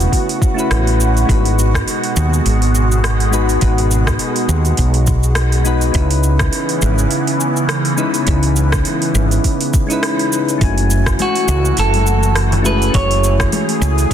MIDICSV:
0, 0, Header, 1, 6, 480
1, 0, Start_track
1, 0, Tempo, 582524
1, 1061, Time_signature, 4, 2, 24, 8
1, 11648, End_track
2, 0, Start_track
2, 0, Title_t, "Clean electric guitar"
2, 0, Program_c, 0, 27
2, 9244, Note_on_c, 0, 66, 75
2, 9716, Note_off_c, 0, 66, 0
2, 9719, Note_on_c, 0, 69, 84
2, 10397, Note_off_c, 0, 69, 0
2, 10432, Note_on_c, 0, 71, 91
2, 10667, Note_off_c, 0, 71, 0
2, 10670, Note_on_c, 0, 73, 89
2, 11113, Note_off_c, 0, 73, 0
2, 11648, End_track
3, 0, Start_track
3, 0, Title_t, "Synth keys"
3, 0, Program_c, 1, 88
3, 0, Control_c, 1, 64, 127
3, 0, Note_on_c, 1, 57, 72
3, 0, Note_on_c, 1, 61, 65
3, 0, Note_on_c, 1, 64, 68
3, 0, Note_on_c, 1, 66, 67
3, 0, Note_on_c, 1, 71, 79
3, 436, Note_off_c, 1, 57, 0
3, 442, Note_off_c, 1, 61, 0
3, 448, Note_on_c, 1, 57, 87
3, 449, Note_off_c, 1, 64, 0
3, 454, Note_off_c, 1, 66, 0
3, 460, Note_off_c, 1, 71, 0
3, 461, Note_on_c, 1, 61, 75
3, 469, Note_on_c, 1, 64, 82
3, 482, Note_on_c, 1, 66, 75
3, 492, Note_on_c, 1, 71, 97
3, 1022, Note_off_c, 1, 57, 0
3, 1028, Note_off_c, 1, 61, 0
3, 1032, Note_off_c, 1, 64, 0
3, 1034, Note_on_c, 1, 56, 69
3, 1039, Note_off_c, 1, 66, 0
3, 1043, Note_off_c, 1, 71, 0
3, 1045, Note_on_c, 1, 59, 68
3, 1058, Note_on_c, 1, 63, 63
3, 1070, Note_on_c, 1, 66, 68
3, 1073, Control_c, 1, 64, 0
3, 1081, Note_on_c, 1, 71, 77
3, 1221, Control_c, 1, 64, 127
3, 2702, Note_off_c, 1, 56, 0
3, 2708, Note_off_c, 1, 59, 0
3, 2715, Note_off_c, 1, 63, 0
3, 2720, Note_off_c, 1, 66, 0
3, 2726, Note_off_c, 1, 71, 0
3, 2727, Note_on_c, 1, 56, 79
3, 2732, Note_on_c, 1, 59, 72
3, 2743, Note_on_c, 1, 63, 70
3, 2747, Note_on_c, 1, 66, 67
3, 2752, Note_on_c, 1, 71, 85
3, 2949, Note_off_c, 1, 56, 0
3, 2951, Note_off_c, 1, 59, 0
3, 2957, Note_off_c, 1, 63, 0
3, 2959, Note_off_c, 1, 66, 0
3, 2961, Note_off_c, 1, 71, 0
3, 2961, Note_on_c, 1, 56, 71
3, 2970, Note_on_c, 1, 59, 64
3, 2984, Note_on_c, 1, 63, 67
3, 2993, Note_on_c, 1, 66, 67
3, 3004, Note_on_c, 1, 71, 80
3, 4626, Note_off_c, 1, 56, 0
3, 4630, Note_off_c, 1, 59, 0
3, 4637, Note_off_c, 1, 63, 0
3, 4642, Note_off_c, 1, 66, 0
3, 4647, Note_off_c, 1, 71, 0
3, 4648, Note_on_c, 1, 56, 78
3, 4655, Note_on_c, 1, 59, 71
3, 4659, Note_on_c, 1, 63, 74
3, 4667, Note_on_c, 1, 66, 69
3, 4674, Note_on_c, 1, 71, 87
3, 4865, Note_off_c, 1, 56, 0
3, 4873, Note_off_c, 1, 59, 0
3, 4875, Note_off_c, 1, 63, 0
3, 4875, Note_on_c, 1, 56, 73
3, 4879, Note_off_c, 1, 66, 0
3, 4883, Note_off_c, 1, 71, 0
3, 4889, Note_on_c, 1, 61, 69
3, 4899, Note_on_c, 1, 63, 68
3, 4910, Control_c, 1, 64, 0
3, 4913, Note_on_c, 1, 64, 66
3, 4922, Note_on_c, 1, 71, 79
3, 5061, Control_c, 1, 64, 127
3, 6543, Note_off_c, 1, 56, 0
3, 6550, Note_off_c, 1, 61, 0
3, 6555, Note_off_c, 1, 63, 0
3, 6562, Note_off_c, 1, 64, 0
3, 6565, Note_on_c, 1, 56, 75
3, 6567, Note_off_c, 1, 71, 0
3, 6570, Note_on_c, 1, 61, 70
3, 6576, Note_on_c, 1, 63, 74
3, 6582, Note_on_c, 1, 64, 68
3, 6589, Note_on_c, 1, 71, 84
3, 6788, Note_off_c, 1, 56, 0
3, 6791, Note_off_c, 1, 61, 0
3, 6793, Note_off_c, 1, 63, 0
3, 6796, Note_off_c, 1, 64, 0
3, 6800, Note_off_c, 1, 71, 0
3, 6800, Note_on_c, 1, 56, 68
3, 6809, Note_on_c, 1, 61, 69
3, 6818, Note_on_c, 1, 63, 66
3, 6830, Note_on_c, 1, 64, 67
3, 6842, Note_on_c, 1, 71, 75
3, 8119, Note_off_c, 1, 56, 0
3, 8123, Note_off_c, 1, 61, 0
3, 8128, Note_off_c, 1, 63, 0
3, 8132, Note_on_c, 1, 56, 90
3, 8134, Note_off_c, 1, 64, 0
3, 8140, Note_off_c, 1, 71, 0
3, 8145, Note_on_c, 1, 61, 83
3, 8157, Note_on_c, 1, 63, 87
3, 8170, Note_on_c, 1, 64, 86
3, 8182, Note_on_c, 1, 71, 100
3, 8704, Note_off_c, 1, 56, 0
3, 8710, Note_off_c, 1, 61, 0
3, 8716, Note_off_c, 1, 63, 0
3, 8717, Note_on_c, 1, 57, 69
3, 8723, Note_off_c, 1, 64, 0
3, 8726, Note_on_c, 1, 61, 69
3, 8729, Note_off_c, 1, 71, 0
3, 8742, Note_on_c, 1, 64, 65
3, 8752, Control_c, 1, 64, 0
3, 8754, Note_on_c, 1, 66, 63
3, 8764, Note_on_c, 1, 80, 76
3, 8878, Control_c, 1, 64, 127
3, 10384, Note_off_c, 1, 57, 0
3, 10389, Note_off_c, 1, 61, 0
3, 10397, Note_off_c, 1, 64, 0
3, 10402, Note_off_c, 1, 66, 0
3, 10403, Note_on_c, 1, 57, 81
3, 10405, Note_on_c, 1, 61, 70
3, 10408, Note_off_c, 1, 80, 0
3, 10416, Note_on_c, 1, 64, 72
3, 10420, Note_on_c, 1, 66, 75
3, 10427, Note_on_c, 1, 68, 86
3, 10622, Note_off_c, 1, 57, 0
3, 10628, Note_off_c, 1, 61, 0
3, 10632, Note_on_c, 1, 57, 68
3, 10633, Note_off_c, 1, 64, 0
3, 10635, Note_off_c, 1, 66, 0
3, 10639, Note_off_c, 1, 68, 0
3, 10642, Note_on_c, 1, 61, 64
3, 10652, Note_on_c, 1, 64, 68
3, 10668, Note_on_c, 1, 66, 67
3, 10676, Note_on_c, 1, 68, 81
3, 11648, Note_off_c, 1, 57, 0
3, 11648, Note_off_c, 1, 61, 0
3, 11648, Note_off_c, 1, 64, 0
3, 11648, Note_off_c, 1, 66, 0
3, 11648, Note_off_c, 1, 68, 0
3, 11648, End_track
4, 0, Start_track
4, 0, Title_t, "Analog synth pad"
4, 0, Program_c, 2, 89
4, 0, Note_on_c, 2, 49, 78
4, 0, Note_on_c, 2, 59, 70
4, 0, Note_on_c, 2, 66, 89
4, 1027, Note_off_c, 2, 59, 0
4, 1028, Note_off_c, 2, 49, 0
4, 1063, Note_on_c, 2, 56, 74
4, 1069, Note_on_c, 2, 47, 78
4, 4869, Note_off_c, 2, 56, 0
4, 4870, Note_off_c, 2, 66, 0
4, 4872, Note_off_c, 2, 47, 0
4, 4894, Note_on_c, 2, 52, 88
4, 4896, Note_on_c, 2, 49, 80
4, 4900, Note_on_c, 2, 59, 76
4, 8704, Note_off_c, 2, 52, 0
4, 8705, Note_off_c, 2, 49, 0
4, 8708, Note_off_c, 2, 59, 0
4, 8745, Note_on_c, 2, 66, 87
4, 8747, Note_on_c, 2, 52, 82
4, 8748, Note_on_c, 2, 57, 69
4, 10644, Note_off_c, 2, 66, 0
4, 10651, Note_on_c, 2, 68, 87
4, 11648, Note_off_c, 2, 52, 0
4, 11648, Note_off_c, 2, 57, 0
4, 11648, Note_off_c, 2, 68, 0
4, 11648, End_track
5, 0, Start_track
5, 0, Title_t, "Fretless electric bass"
5, 0, Program_c, 3, 35
5, 584, Note_on_c, 3, 33, 89
5, 1021, Note_off_c, 3, 33, 0
5, 1064, Note_on_c, 3, 32, 90
5, 1501, Note_off_c, 3, 32, 0
5, 1785, Note_on_c, 3, 39, 84
5, 1971, Note_off_c, 3, 39, 0
5, 2024, Note_on_c, 3, 32, 83
5, 2941, Note_off_c, 3, 32, 0
5, 2984, Note_on_c, 3, 32, 91
5, 3421, Note_off_c, 3, 32, 0
5, 3697, Note_on_c, 3, 39, 84
5, 3887, Note_off_c, 3, 39, 0
5, 3943, Note_on_c, 3, 35, 89
5, 4860, Note_off_c, 3, 35, 0
5, 4900, Note_on_c, 3, 37, 94
5, 5339, Note_off_c, 3, 37, 0
5, 5621, Note_on_c, 3, 32, 88
5, 5809, Note_off_c, 3, 32, 0
5, 6820, Note_on_c, 3, 37, 90
5, 7259, Note_off_c, 3, 37, 0
5, 7538, Note_on_c, 3, 32, 85
5, 7727, Note_off_c, 3, 32, 0
5, 8744, Note_on_c, 3, 30, 95
5, 9181, Note_off_c, 3, 30, 0
5, 9462, Note_on_c, 3, 37, 88
5, 9649, Note_off_c, 3, 37, 0
5, 9705, Note_on_c, 3, 30, 82
5, 10621, Note_off_c, 3, 30, 0
5, 10666, Note_on_c, 3, 30, 90
5, 11102, Note_off_c, 3, 30, 0
5, 11383, Note_on_c, 3, 37, 87
5, 11570, Note_off_c, 3, 37, 0
5, 11648, End_track
6, 0, Start_track
6, 0, Title_t, "Drums"
6, 2, Note_on_c, 9, 46, 28
6, 7, Note_on_c, 9, 82, 41
6, 84, Note_off_c, 9, 46, 0
6, 89, Note_off_c, 9, 82, 0
6, 103, Note_on_c, 9, 36, 59
6, 105, Note_on_c, 9, 46, 62
6, 110, Note_on_c, 9, 82, 33
6, 185, Note_off_c, 9, 36, 0
6, 188, Note_off_c, 9, 46, 0
6, 192, Note_off_c, 9, 82, 0
6, 241, Note_on_c, 9, 46, 40
6, 324, Note_off_c, 9, 46, 0
6, 343, Note_on_c, 9, 36, 105
6, 349, Note_on_c, 9, 82, 75
6, 426, Note_off_c, 9, 36, 0
6, 431, Note_off_c, 9, 82, 0
6, 483, Note_on_c, 9, 82, 41
6, 565, Note_off_c, 9, 82, 0
6, 584, Note_on_c, 9, 37, 68
6, 584, Note_on_c, 9, 46, 56
6, 589, Note_on_c, 9, 82, 31
6, 666, Note_off_c, 9, 37, 0
6, 666, Note_off_c, 9, 46, 0
6, 671, Note_off_c, 9, 82, 0
6, 720, Note_on_c, 9, 46, 38
6, 802, Note_off_c, 9, 46, 0
6, 828, Note_on_c, 9, 82, 69
6, 911, Note_off_c, 9, 82, 0
6, 962, Note_on_c, 9, 46, 26
6, 966, Note_on_c, 9, 82, 42
6, 1044, Note_off_c, 9, 46, 0
6, 1049, Note_off_c, 9, 82, 0
6, 1063, Note_on_c, 9, 36, 103
6, 1066, Note_on_c, 9, 46, 59
6, 1071, Note_on_c, 9, 82, 30
6, 1145, Note_off_c, 9, 36, 0
6, 1148, Note_off_c, 9, 46, 0
6, 1153, Note_off_c, 9, 82, 0
6, 1198, Note_on_c, 9, 46, 40
6, 1281, Note_off_c, 9, 46, 0
6, 1310, Note_on_c, 9, 82, 75
6, 1392, Note_off_c, 9, 82, 0
6, 1438, Note_on_c, 9, 36, 91
6, 1443, Note_on_c, 9, 37, 69
6, 1443, Note_on_c, 9, 46, 28
6, 1448, Note_on_c, 9, 82, 40
6, 1520, Note_off_c, 9, 36, 0
6, 1526, Note_off_c, 9, 37, 0
6, 1526, Note_off_c, 9, 46, 0
6, 1530, Note_off_c, 9, 82, 0
6, 1546, Note_on_c, 9, 46, 66
6, 1550, Note_on_c, 9, 82, 34
6, 1628, Note_off_c, 9, 46, 0
6, 1633, Note_off_c, 9, 82, 0
6, 1677, Note_on_c, 9, 46, 41
6, 1759, Note_off_c, 9, 46, 0
6, 1783, Note_on_c, 9, 82, 68
6, 1866, Note_off_c, 9, 82, 0
6, 1925, Note_on_c, 9, 82, 40
6, 2007, Note_off_c, 9, 82, 0
6, 2025, Note_on_c, 9, 46, 57
6, 2029, Note_on_c, 9, 82, 30
6, 2107, Note_off_c, 9, 46, 0
6, 2112, Note_off_c, 9, 82, 0
6, 2158, Note_on_c, 9, 46, 42
6, 2240, Note_off_c, 9, 46, 0
6, 2266, Note_on_c, 9, 82, 72
6, 2348, Note_off_c, 9, 82, 0
6, 2404, Note_on_c, 9, 82, 38
6, 2486, Note_off_c, 9, 82, 0
6, 2505, Note_on_c, 9, 37, 65
6, 2505, Note_on_c, 9, 46, 55
6, 2509, Note_on_c, 9, 82, 31
6, 2587, Note_off_c, 9, 37, 0
6, 2587, Note_off_c, 9, 46, 0
6, 2592, Note_off_c, 9, 82, 0
6, 2639, Note_on_c, 9, 46, 39
6, 2722, Note_off_c, 9, 46, 0
6, 2744, Note_on_c, 9, 82, 66
6, 2827, Note_off_c, 9, 82, 0
6, 2876, Note_on_c, 9, 46, 26
6, 2880, Note_on_c, 9, 82, 42
6, 2958, Note_off_c, 9, 46, 0
6, 2963, Note_off_c, 9, 82, 0
6, 2977, Note_on_c, 9, 46, 63
6, 2981, Note_on_c, 9, 82, 29
6, 2983, Note_on_c, 9, 36, 102
6, 3059, Note_off_c, 9, 46, 0
6, 3064, Note_off_c, 9, 82, 0
6, 3065, Note_off_c, 9, 36, 0
6, 3116, Note_on_c, 9, 46, 44
6, 3198, Note_off_c, 9, 46, 0
6, 3223, Note_on_c, 9, 82, 67
6, 3305, Note_off_c, 9, 82, 0
6, 3354, Note_on_c, 9, 37, 67
6, 3354, Note_on_c, 9, 46, 27
6, 3357, Note_on_c, 9, 36, 94
6, 3359, Note_on_c, 9, 82, 42
6, 3437, Note_off_c, 9, 37, 0
6, 3437, Note_off_c, 9, 46, 0
6, 3439, Note_off_c, 9, 36, 0
6, 3441, Note_off_c, 9, 82, 0
6, 3454, Note_on_c, 9, 46, 64
6, 3459, Note_on_c, 9, 82, 30
6, 3536, Note_off_c, 9, 46, 0
6, 3541, Note_off_c, 9, 82, 0
6, 3591, Note_on_c, 9, 46, 40
6, 3673, Note_off_c, 9, 46, 0
6, 3700, Note_on_c, 9, 82, 66
6, 3783, Note_off_c, 9, 82, 0
6, 3830, Note_on_c, 9, 46, 28
6, 3834, Note_on_c, 9, 82, 39
6, 3912, Note_off_c, 9, 46, 0
6, 3917, Note_off_c, 9, 82, 0
6, 3933, Note_on_c, 9, 46, 65
6, 3938, Note_on_c, 9, 82, 30
6, 3941, Note_on_c, 9, 36, 50
6, 4016, Note_off_c, 9, 46, 0
6, 4021, Note_off_c, 9, 82, 0
6, 4024, Note_off_c, 9, 36, 0
6, 4069, Note_on_c, 9, 46, 44
6, 4152, Note_off_c, 9, 46, 0
6, 4176, Note_on_c, 9, 82, 69
6, 4182, Note_on_c, 9, 36, 94
6, 4259, Note_off_c, 9, 82, 0
6, 4264, Note_off_c, 9, 36, 0
6, 4312, Note_on_c, 9, 82, 37
6, 4394, Note_off_c, 9, 82, 0
6, 4410, Note_on_c, 9, 37, 72
6, 4410, Note_on_c, 9, 46, 59
6, 4415, Note_on_c, 9, 82, 31
6, 4493, Note_off_c, 9, 37, 0
6, 4493, Note_off_c, 9, 46, 0
6, 4497, Note_off_c, 9, 82, 0
6, 4550, Note_on_c, 9, 46, 39
6, 4633, Note_off_c, 9, 46, 0
6, 4657, Note_on_c, 9, 82, 60
6, 4740, Note_off_c, 9, 82, 0
6, 4789, Note_on_c, 9, 46, 28
6, 4793, Note_on_c, 9, 82, 39
6, 4871, Note_off_c, 9, 46, 0
6, 4876, Note_off_c, 9, 82, 0
6, 4894, Note_on_c, 9, 46, 64
6, 4899, Note_on_c, 9, 82, 31
6, 4901, Note_on_c, 9, 36, 103
6, 4977, Note_off_c, 9, 46, 0
6, 4981, Note_off_c, 9, 82, 0
6, 4983, Note_off_c, 9, 36, 0
6, 5031, Note_on_c, 9, 46, 46
6, 5113, Note_off_c, 9, 46, 0
6, 5137, Note_on_c, 9, 82, 68
6, 5219, Note_off_c, 9, 82, 0
6, 5269, Note_on_c, 9, 37, 70
6, 5269, Note_on_c, 9, 46, 30
6, 5273, Note_on_c, 9, 82, 39
6, 5277, Note_on_c, 9, 36, 97
6, 5351, Note_off_c, 9, 37, 0
6, 5351, Note_off_c, 9, 46, 0
6, 5356, Note_off_c, 9, 82, 0
6, 5359, Note_off_c, 9, 36, 0
6, 5377, Note_on_c, 9, 46, 68
6, 5382, Note_on_c, 9, 82, 30
6, 5459, Note_off_c, 9, 46, 0
6, 5464, Note_off_c, 9, 82, 0
6, 5512, Note_on_c, 9, 46, 42
6, 5594, Note_off_c, 9, 46, 0
6, 5618, Note_on_c, 9, 82, 71
6, 5701, Note_off_c, 9, 82, 0
6, 5754, Note_on_c, 9, 82, 40
6, 5837, Note_off_c, 9, 82, 0
6, 5855, Note_on_c, 9, 46, 64
6, 5860, Note_on_c, 9, 82, 32
6, 5937, Note_off_c, 9, 46, 0
6, 5942, Note_off_c, 9, 82, 0
6, 5994, Note_on_c, 9, 46, 45
6, 6076, Note_off_c, 9, 46, 0
6, 6102, Note_on_c, 9, 82, 69
6, 6184, Note_off_c, 9, 82, 0
6, 6234, Note_on_c, 9, 82, 37
6, 6317, Note_off_c, 9, 82, 0
6, 6335, Note_on_c, 9, 37, 72
6, 6335, Note_on_c, 9, 46, 61
6, 6340, Note_on_c, 9, 82, 29
6, 6417, Note_off_c, 9, 37, 0
6, 6417, Note_off_c, 9, 46, 0
6, 6422, Note_off_c, 9, 82, 0
6, 6468, Note_on_c, 9, 46, 42
6, 6550, Note_off_c, 9, 46, 0
6, 6573, Note_on_c, 9, 82, 62
6, 6656, Note_off_c, 9, 82, 0
6, 6706, Note_on_c, 9, 46, 31
6, 6710, Note_on_c, 9, 82, 38
6, 6788, Note_off_c, 9, 46, 0
6, 6793, Note_off_c, 9, 82, 0
6, 6812, Note_on_c, 9, 46, 67
6, 6816, Note_on_c, 9, 82, 32
6, 6820, Note_on_c, 9, 36, 99
6, 6894, Note_off_c, 9, 46, 0
6, 6899, Note_off_c, 9, 82, 0
6, 6903, Note_off_c, 9, 36, 0
6, 6944, Note_on_c, 9, 46, 49
6, 7027, Note_off_c, 9, 46, 0
6, 7056, Note_on_c, 9, 82, 70
6, 7138, Note_off_c, 9, 82, 0
6, 7189, Note_on_c, 9, 37, 76
6, 7189, Note_on_c, 9, 46, 29
6, 7193, Note_on_c, 9, 82, 40
6, 7197, Note_on_c, 9, 36, 96
6, 7271, Note_off_c, 9, 37, 0
6, 7271, Note_off_c, 9, 46, 0
6, 7276, Note_off_c, 9, 82, 0
6, 7279, Note_off_c, 9, 36, 0
6, 7293, Note_on_c, 9, 46, 67
6, 7297, Note_on_c, 9, 82, 30
6, 7375, Note_off_c, 9, 46, 0
6, 7380, Note_off_c, 9, 82, 0
6, 7430, Note_on_c, 9, 46, 44
6, 7513, Note_off_c, 9, 46, 0
6, 7539, Note_on_c, 9, 82, 67
6, 7621, Note_off_c, 9, 82, 0
6, 7674, Note_on_c, 9, 46, 31
6, 7678, Note_on_c, 9, 82, 40
6, 7756, Note_off_c, 9, 46, 0
6, 7761, Note_off_c, 9, 82, 0
6, 7781, Note_on_c, 9, 46, 70
6, 7783, Note_on_c, 9, 36, 55
6, 7785, Note_on_c, 9, 82, 31
6, 7863, Note_off_c, 9, 46, 0
6, 7865, Note_off_c, 9, 36, 0
6, 7868, Note_off_c, 9, 82, 0
6, 7915, Note_on_c, 9, 46, 47
6, 7997, Note_off_c, 9, 46, 0
6, 8023, Note_on_c, 9, 36, 93
6, 8023, Note_on_c, 9, 82, 70
6, 8105, Note_off_c, 9, 36, 0
6, 8105, Note_off_c, 9, 82, 0
6, 8157, Note_on_c, 9, 46, 27
6, 8162, Note_on_c, 9, 82, 40
6, 8240, Note_off_c, 9, 46, 0
6, 8244, Note_off_c, 9, 82, 0
6, 8263, Note_on_c, 9, 37, 72
6, 8263, Note_on_c, 9, 46, 69
6, 8268, Note_on_c, 9, 82, 29
6, 8346, Note_off_c, 9, 37, 0
6, 8346, Note_off_c, 9, 46, 0
6, 8350, Note_off_c, 9, 82, 0
6, 8399, Note_on_c, 9, 46, 42
6, 8482, Note_off_c, 9, 46, 0
6, 8508, Note_on_c, 9, 82, 67
6, 8591, Note_off_c, 9, 82, 0
6, 8639, Note_on_c, 9, 46, 28
6, 8644, Note_on_c, 9, 82, 40
6, 8722, Note_off_c, 9, 46, 0
6, 8726, Note_off_c, 9, 82, 0
6, 8743, Note_on_c, 9, 46, 66
6, 8744, Note_on_c, 9, 36, 114
6, 8748, Note_on_c, 9, 82, 33
6, 8826, Note_off_c, 9, 36, 0
6, 8826, Note_off_c, 9, 46, 0
6, 8830, Note_off_c, 9, 82, 0
6, 8879, Note_on_c, 9, 46, 44
6, 8962, Note_off_c, 9, 46, 0
6, 8985, Note_on_c, 9, 82, 74
6, 9067, Note_off_c, 9, 82, 0
6, 9117, Note_on_c, 9, 37, 73
6, 9117, Note_on_c, 9, 46, 30
6, 9120, Note_on_c, 9, 36, 95
6, 9122, Note_on_c, 9, 82, 40
6, 9199, Note_off_c, 9, 37, 0
6, 9199, Note_off_c, 9, 46, 0
6, 9202, Note_off_c, 9, 36, 0
6, 9204, Note_off_c, 9, 82, 0
6, 9221, Note_on_c, 9, 46, 66
6, 9225, Note_on_c, 9, 82, 32
6, 9227, Note_on_c, 9, 63, 74
6, 9303, Note_off_c, 9, 46, 0
6, 9308, Note_off_c, 9, 82, 0
6, 9310, Note_off_c, 9, 63, 0
6, 9356, Note_on_c, 9, 46, 43
6, 9439, Note_off_c, 9, 46, 0
6, 9462, Note_on_c, 9, 82, 71
6, 9544, Note_off_c, 9, 82, 0
6, 9600, Note_on_c, 9, 82, 43
6, 9683, Note_off_c, 9, 82, 0
6, 9697, Note_on_c, 9, 46, 70
6, 9702, Note_on_c, 9, 82, 32
6, 9780, Note_off_c, 9, 46, 0
6, 9785, Note_off_c, 9, 82, 0
6, 9837, Note_on_c, 9, 46, 45
6, 9841, Note_on_c, 9, 63, 69
6, 9919, Note_off_c, 9, 46, 0
6, 9923, Note_off_c, 9, 63, 0
6, 9944, Note_on_c, 9, 82, 76
6, 10026, Note_off_c, 9, 82, 0
6, 10078, Note_on_c, 9, 82, 37
6, 10160, Note_off_c, 9, 82, 0
6, 10180, Note_on_c, 9, 37, 73
6, 10180, Note_on_c, 9, 46, 63
6, 10185, Note_on_c, 9, 82, 32
6, 10263, Note_off_c, 9, 37, 0
6, 10263, Note_off_c, 9, 46, 0
6, 10267, Note_off_c, 9, 82, 0
6, 10318, Note_on_c, 9, 46, 45
6, 10322, Note_on_c, 9, 64, 80
6, 10400, Note_off_c, 9, 46, 0
6, 10405, Note_off_c, 9, 64, 0
6, 10418, Note_on_c, 9, 63, 77
6, 10426, Note_on_c, 9, 82, 62
6, 10500, Note_off_c, 9, 63, 0
6, 10508, Note_off_c, 9, 82, 0
6, 10562, Note_on_c, 9, 46, 30
6, 10566, Note_on_c, 9, 82, 41
6, 10644, Note_off_c, 9, 46, 0
6, 10649, Note_off_c, 9, 82, 0
6, 10663, Note_on_c, 9, 46, 64
6, 10666, Note_on_c, 9, 36, 110
6, 10668, Note_on_c, 9, 82, 32
6, 10746, Note_off_c, 9, 46, 0
6, 10748, Note_off_c, 9, 36, 0
6, 10750, Note_off_c, 9, 82, 0
6, 10801, Note_on_c, 9, 46, 42
6, 10883, Note_off_c, 9, 46, 0
6, 10909, Note_on_c, 9, 82, 77
6, 10991, Note_off_c, 9, 82, 0
6, 11040, Note_on_c, 9, 37, 74
6, 11040, Note_on_c, 9, 46, 29
6, 11042, Note_on_c, 9, 36, 98
6, 11045, Note_on_c, 9, 82, 40
6, 11123, Note_off_c, 9, 37, 0
6, 11123, Note_off_c, 9, 46, 0
6, 11124, Note_off_c, 9, 36, 0
6, 11127, Note_off_c, 9, 82, 0
6, 11144, Note_on_c, 9, 46, 66
6, 11146, Note_on_c, 9, 63, 81
6, 11148, Note_on_c, 9, 82, 35
6, 11226, Note_off_c, 9, 46, 0
6, 11229, Note_off_c, 9, 63, 0
6, 11231, Note_off_c, 9, 82, 0
6, 11279, Note_on_c, 9, 46, 44
6, 11361, Note_off_c, 9, 46, 0
6, 11389, Note_on_c, 9, 82, 74
6, 11472, Note_off_c, 9, 82, 0
6, 11519, Note_on_c, 9, 46, 28
6, 11523, Note_on_c, 9, 82, 43
6, 11601, Note_off_c, 9, 46, 0
6, 11606, Note_off_c, 9, 82, 0
6, 11648, End_track
0, 0, End_of_file